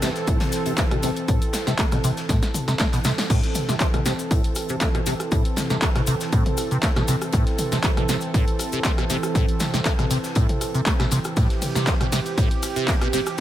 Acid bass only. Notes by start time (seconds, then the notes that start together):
0.02 C3
0.28 A2
0.66 C3
0.78 A3
0.91 B2
1.03 C3
1.28 A2
1.67 C3
1.79 A3
1.92 B2
2.04 C3
2.29 A2
2.68 C3
2.80 A3
2.93 B2
3.05 C3
3.30 A2
3.69 C3
3.80 A3
3.94 B2
4.06 C3
4.31 A2
4.70 C3
4.81 A3
4.95 B2
5.06 C3
5.32 A2
5.70 C3
5.82 A3
5.96 B2
6.07 C3
6.33 A2
6.71 C3
6.83 A3
6.96 B2
7.08 C3
7.33 A2
7.72 C3
7.84 A3
7.97 B2
8.09 C3
8.34 A2
8.73 C3
8.85 A3
8.98 B2
9.10 C3
9.35 A2
9.74 C3
9.85 A3
9.99 B2
10.11 C3
10.36 A2
10.74 C3
10.86 A3
11.00 B2
11.12 C3
11.37 A2
11.75 C3
11.87 C4
12.01 B2
12.12 C3
12.38 A2
12.76 C3
12.88 C4
13.01 B2
13.13 C3